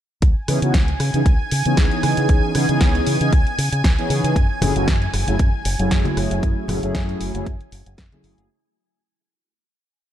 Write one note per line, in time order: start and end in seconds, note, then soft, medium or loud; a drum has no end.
0.22 0.32 C#2 medium
0.22 8.51 G#5 medium
0.22 kick loud
0.22 closed hi-hat medium
0.48 0.58 C#3 medium
0.48 0.59 E3 medium
0.48 0.59 B3 medium
0.48 0.59 C#4 medium
0.48 0.59 D#4 medium
0.48 0.59 G#4 loud
0.48 cross-stick medium
0.48 open hi-hat loud
0.62 0.70 C#3 loud
0.62 0.73 E3 medium
0.62 0.73 B3 medium
0.62 0.73 C#4 medium
0.62 0.74 D#4 medium
0.62 0.74 F#4 medium
0.62 closed hi-hat medium
0.74 0.93 C#2 loud
0.74 kick loud
0.74 snare loud
0.74 closed hi-hat medium
0.88 closed hi-hat soft
1.00 1.10 C#3 medium
1.00 cross-stick medium
1.00 open hi-hat medium
1.14 1.22 C#3 medium
1.14 1.21 E3 medium
1.14 1.21 B3 medium
1.14 1.21 C#4 medium
1.14 1.21 D#4 medium
1.14 1.21 G#4 medium
1.14 closed hi-hat medium
1.26 1.36 C#2 loud
1.26 kick loud
1.26 closed hi-hat medium
1.51 1.61 C#3 medium
1.51 open hi-hat loud
1.65 1.74 C#3 loud
1.65 2.52 E3 medium
1.65 2.52 B3 medium
1.65 2.52 C#4 medium
1.65 2.53 D#4 medium
1.65 2.53 G#4 medium
1.65 closed hi-hat medium
1.77 1.87 C#2 medium
1.77 kick loud
1.77 snare loud
1.77 closed hi-hat medium
1.92 closed hi-hat soft
2.03 2.13 C#3 medium
2.03 cross-stick medium
2.03 open hi-hat medium
2.17 2.26 C#3 medium
2.17 closed hi-hat medium
2.29 2.39 C#2 loud
2.29 kick loud
2.29 closed hi-hat medium
2.55 2.65 C#3 loud
2.55 2.66 E3 medium
2.55 2.66 B3 medium
2.55 2.66 C#4 medium
2.55 2.66 D#4 medium
2.55 2.66 G#4 loud
2.55 cross-stick medium
2.55 open hi-hat loud
2.69 2.77 C#3 loud
2.69 3.17 E3 medium
2.69 3.17 B3 medium
2.69 3.18 C#4 medium
2.69 3.18 D#4 medium
2.69 3.18 G#4 loud
2.69 closed hi-hat medium
2.81 3.00 C#2 loud
2.81 kick loud
2.81 snare loud
2.81 closed hi-hat medium
2.95 closed hi-hat soft
3.07 3.17 C#3 medium
3.07 open hi-hat loud
3.20 3.29 C#3 medium
3.20 3.32 E3 medium
3.20 3.32 B3 medium
3.20 3.32 C#4 medium
3.20 3.32 D#4 medium
3.20 3.32 G#4 loud
3.20 closed hi-hat medium
3.33 3.42 C#2 loud
3.33 kick loud
3.33 closed hi-hat medium
3.47 muted fingered electric bass stroke soft
3.47 closed hi-hat soft
3.58 3.68 C#3 medium
3.58 open hi-hat loud
3.72 3.81 C#3 loud
3.72 closed hi-hat medium
3.84 3.94 C#2 medium
3.84 kick loud
3.84 cross-stick medium
3.84 snare loud
3.84 closed hi-hat medium
3.98 4.34 E3 medium
3.98 4.35 B3 medium
3.98 4.35 C#4 medium
3.98 4.35 D#4 medium
3.98 4.35 G#4 medium
3.98 closed hi-hat soft
4.10 4.20 C#3 medium
4.10 open hi-hat loud
4.24 4.32 C#3 medium
4.24 closed hi-hat medium
4.36 4.46 F#2 loud
4.36 kick loud
4.36 closed hi-hat medium
4.61 4.72 F#1 loud
4.61 4.72 F#3 medium
4.61 4.72 A3 medium
4.61 4.73 C#4 medium
4.61 4.73 E4 medium
4.61 4.73 G#4 loud
4.61 cross-stick medium
4.61 open hi-hat loud
4.61 high conga loud
4.61 low conga loud
4.75 4.84 F#1 loud
4.75 4.87 F#3 medium
4.75 4.87 A3 medium
4.75 4.87 C#4 medium
4.75 4.87 E4 medium
4.75 4.87 F#4 medium
4.75 closed hi-hat soft
4.88 5.06 F#2 loud
4.88 kick loud
4.88 snare loud
4.88 closed hi-hat medium
5.02 closed hi-hat soft
5.13 5.23 F#1 loud
5.13 cross-stick medium
5.13 open hi-hat loud
5.27 5.36 F#1 medium
5.27 5.34 F#3 medium
5.27 5.35 A3 medium
5.27 5.35 C#4 medium
5.27 5.35 E4 medium
5.27 5.35 G#4 medium
5.27 closed hi-hat medium
5.27 high conga medium
5.39 5.49 F#2 loud
5.39 kick loud
5.39 closed hi-hat medium
5.65 5.75 F#1 loud
5.65 open hi-hat loud
5.78 5.88 F#1 loud
5.78 6.65 F#3 medium
5.78 6.66 A3 medium
5.78 6.66 C#4 medium
5.78 6.66 E4 medium
5.78 6.66 G#4 medium
5.78 closed hi-hat medium
5.91 6.01 F#2 medium
5.91 kick loud
5.91 snare loud
5.91 closed hi-hat medium
6.05 closed hi-hat soft
6.05 high conga loud
6.17 6.27 F#1 medium
6.17 cross-stick medium
6.17 open hi-hat loud
6.31 6.39 F#1 medium
6.31 closed hi-hat medium
6.43 6.53 F#2 medium
6.43 kick loud
6.43 closed hi-hat medium
6.68 6.78 F#1 loud
6.68 6.79 F#3 medium
6.68 6.79 A3 medium
6.68 6.80 C#4 medium
6.68 6.80 E4 medium
6.68 6.80 G#4 loud
6.68 cross-stick medium
6.68 open hi-hat loud
6.68 high conga medium
6.68 low conga medium
6.83 6.91 F#1 loud
6.83 7.31 F#3 loud
6.83 7.31 A3 medium
6.83 7.31 C#4 medium
6.83 7.31 E4 medium
6.83 7.32 G#4 loud
6.83 closed hi-hat soft
6.95 7.13 F#2 loud
6.95 kick loud
6.95 snare loud
6.95 closed hi-hat medium
7.09 closed hi-hat soft
7.20 7.30 F#1 loud
7.20 open hi-hat loud
7.34 7.43 F#1 loud
7.34 7.46 F#3 medium
7.34 7.46 A3 medium
7.34 7.46 C#4 medium
7.34 7.46 E4 medium
7.34 7.46 G#4 loud
7.34 closed hi-hat medium
7.34 high conga medium
7.46 7.56 F#2 loud
7.46 kick loud
7.46 closed hi-hat medium
7.61 closed hi-hat soft
7.72 7.82 F#1 medium
7.72 open hi-hat loud
7.86 7.94 F#1 loud
7.86 closed hi-hat soft
7.98 8.08 F#2 medium
7.98 kick loud
7.98 cross-stick medium
7.98 snare loud
7.98 closed hi-hat medium
8.12 8.48 F#3 medium
8.12 8.48 A3 medium
8.12 8.49 C#4 medium
8.12 8.49 E4 medium
8.12 8.49 G#4 medium
8.12 closed hi-hat soft
8.12 high conga medium
8.24 8.34 F#1 medium
8.24 open hi-hat loud
8.38 8.46 F#1 loud
8.38 closed hi-hat medium